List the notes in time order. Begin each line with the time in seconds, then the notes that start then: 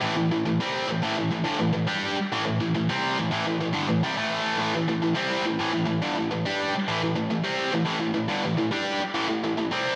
0.02 A2 E3
0.16 A2 E3
0.32 A2 E3
0.46 A2 E3
0.60 C3 G3 C4
0.88 A2 E3
1.02 A2 E3
1.17 A2 E3
1.31 A2 E3
1.44 G2 D3
1.59 A2 E3
1.73 A2 E3
1.87 G3 D4 G4
2.17 muted distorted electric guitar stroke
2.33 A2 E3
2.46 A2 E3
2.60 A2 E3
2.75 A2 E3
2.89 C3 G3 C4
3.19 A2 E3
3.31 A2 E3
3.46 A2 E3
3.61 A2 E3
3.73 G2 D3
3.88 A2 E3
4.03 C3 G3
4.16 A2 E3 A3
4.58 A2 E3
4.75 A2 E3
4.88 A2 E3
5.03 A2 E3
5.15 C3 G3 C4
5.45 A2 E3
5.59 A2 E3
5.73 A2 E3
5.85 A2 E3
6.02 G2 D3
6.17 A2 E3
6.31 A2 E3
6.46 G3 D4 G4
6.76 muted distorted electric guitar stroke
6.88 A2 E3
7.03 A2 E3
7.16 A2 E3
7.31 A2 E3
7.44 C3 G3 C4
7.73 A2 E3
7.86 A2 E3
8.00 A2 E3
8.14 A2 E3
8.29 G2 D3
8.45 A2 E3
8.58 A2 E3
8.72 G3 D4 G4
9.00 muted distorted electric guitar stroke
9.14 A2 E3
9.28 A2 E3
9.44 A2 E3
9.57 A2 E3
9.71 C3 G3 C4